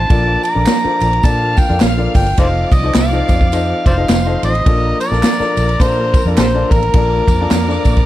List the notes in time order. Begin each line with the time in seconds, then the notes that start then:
Already playing: F4 A5
0.09 A#1 A#2 F3 A#3 D4 F4 A4 A#4 D5 D6, kick, ride, tambourine
0.43 A#5, ride, tambourine
0.54 A#1 D4 F4 A4 A#4 D5
0.66 snare, clap, ride, tambourine
0.83 D4 F4 A4 A#4 C5, muted fingered electric bass stroke
1.00 A#1, ride, tambourine
1.13 ride
1.23 A#2 D4 F4 A4 A#4 D5 F5 A5 F6, kick, ride, tambourine
1.57 G5, kick, ride, tambourine
1.69 F2 D4 F4 A4 A#4 D5
1.80 A#1 F5, snare, clap, ride, tambourine
1.97 D4 F4 A4 A#4 D5
2.14 G1 G5, kick, open hi-hat, ride, tambourine
2.26 ride
2.37 F1 F3 C4 D#4 F4 A4 C5 D5 D#5 F5 D6, kick, hi-hat pedal, ride, tambourine
2.71 C2 D#5, kick, ride, tambourine
2.83 D#4 F4 A4 C5 D#5
2.95 C2 F5, snare, clap, ride, tambourine
3.12 D#4 F4 A4 C5 D#5
3.28 F2, kick, ride, tambourine
3.41 kick
3.52 D#4 F4 A4 C5 D#5, ride, tambourine
3.86 F1 C5 D5 F5 C6, kick, ride, tambourine
3.97 D#4 F4 A4 C5 D#5
4.09 F1, snare, clap, ride, tambourine
4.26 D#4 F4 A4 C5 D#5
4.43 A1 D#5, ride, tambourine
4.55 ride
4.66 A#1 A#2 A#3 D4 F4 A4 A#4 D5 A#5, kick, ride
5.00 D5, ride, tambourine
5.11 A#1 D4 F4 A4 A#4 D5, snare
5.23 snare, clap, ride, tambourine
5.39 D4 F4 A4 A#4 D5, muted fingered electric bass stroke, snare
5.57 A#1, ride, tambourine
5.69 ride
5.80 A#2 D4 F4 A4 A#4 C5 D5, kick, ride, tambourine
6.14 kick, ride, tambourine
6.25 F2 D4 F4 A4 A#4 D5
6.37 A#1 G4 A4 C5, snare, clap, ride, tambourine
6.54 D4 F4 A4 A#4 D5
6.71 A1 A#4, kick, ride, tambourine
6.82 ride
6.94 A#1 A#2 D4 F4 A4 A#4 D5 D6, kick, ride, tambourine
7.28 F2, kick, ride, tambourine
7.40 D4 F4 A4 A#4 D5
7.51 F2, snare, clap, ride, tambourine
7.68 D4 F4 A4 A#4 D5, snare
7.85 A#2, kick, ride, tambourine
7.96 kick, ride